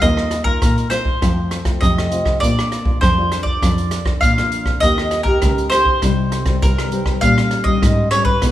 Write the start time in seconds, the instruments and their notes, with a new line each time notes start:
0.02 cello D#2, nylon-string guitar D#3 A#3 D#4 F4, mandolin D#5, kick, closed hi-hat
0.17 cross-stick
0.31 cross-stick, closed hi-hat
0.44 nylon-string guitar A#3 D#4 F4, mandolin A#4, kick
0.62 cello A#2, nylon-string guitar A#2, kick, cross-stick, closed hi-hat
0.78 closed hi-hat
0.90 nylon-string guitar A#3 D#4 F4, mandolin C5, cross-stick, closed hi-hat
1.05 kick
1.22 cello F2, nylon-string guitar F3 A3 C4 F4, kick, cross-stick, closed hi-hat
1.51 cross-stick, closed hi-hat
1.65 nylon-string guitar A3 C4 F4, kick, cross-stick, closed hi-hat
1.81 cello F2, nylon-string guitar C3, mandolin D#5, kick, closed hi-hat
1.98 cross-stick, closed hi-hat
2.10 nylon-string guitar A3 C4 F4, closed hi-hat
2.25 kick, cross-stick
2.40 nylon-string guitar A#2 A#3 D4 F4, cello A#2, mandolin D5, kick, closed hi-hat
2.59 cross-stick, closed hi-hat
2.72 cross-stick, closed hi-hat
2.85 nylon-string guitar A#3 D4 F4, kick
3.01 nylon-string guitar F2, cello F2, mandolin C5, kick, cross-stick, closed hi-hat
3.17 nylon-string guitar A#3 D4 F4
3.32 cross-stick, closed hi-hat
3.43 mandolin D5, kick
3.62 cello F2, nylon-string guitar A#2 A#3 D4 F4, kick, cross-stick, closed hi-hat
3.78 closed hi-hat
3.91 cross-stick, closed hi-hat
4.05 nylon-string guitar A#3 D4 F4, kick, cross-stick
4.21 nylon-string guitar F2, cello A#2, mandolin F5, kick, closed hi-hat
4.38 nylon-string guitar A#3 D4 F4, cross-stick, closed hi-hat
4.52 closed hi-hat
4.66 kick, cross-stick
4.80 cello D#2, nylon-string guitar D#3 A#3 D#4 G4, mandolin D#5, kick, closed hi-hat
4.98 cross-stick
5.11 cross-stick, closed hi-hat
5.23 nylon-string guitar A#3 D#4 G4, mandolin A#4, kick
5.42 cello C#2, nylon-string guitar A#2, kick, cross-stick, closed hi-hat
5.58 closed hi-hat
5.70 nylon-string guitar A#3 D#4 G4, mandolin C5, cross-stick, closed hi-hat
5.85 kick
6.02 cello C2, nylon-string guitar C3 G3 C4 D#4, kick, cross-stick, closed hi-hat
6.32 cross-stick, closed hi-hat
6.46 nylon-string guitar G3 C4 D#4, kick, cross-stick, closed hi-hat
6.62 cello C2, nylon-string guitar G2, mandolin A#4, kick, closed hi-hat
6.79 cross-stick, closed hi-hat
6.91 nylon-string guitar G3 C4 D#4, closed hi-hat
7.06 kick, cross-stick
7.21 nylon-string guitar A#2 G3 C#4 D#4, cello A#2, mandolin F5, kick, closed hi-hat
7.38 cross-stick, closed hi-hat
7.51 cross-stick, closed hi-hat
7.64 nylon-string guitar G3 C#4 D#4, mandolin D#5, kick
7.82 cello G#2, nylon-string guitar A#2, kick, cross-stick, closed hi-hat
8.11 nylon-string guitar G3 C#4 D#4, mandolin C#5, cross-stick, closed hi-hat
8.25 mandolin B4, kick
8.42 nylon-string guitar B2 G#3 B3 D#4, cello B2, kick, cross-stick, closed hi-hat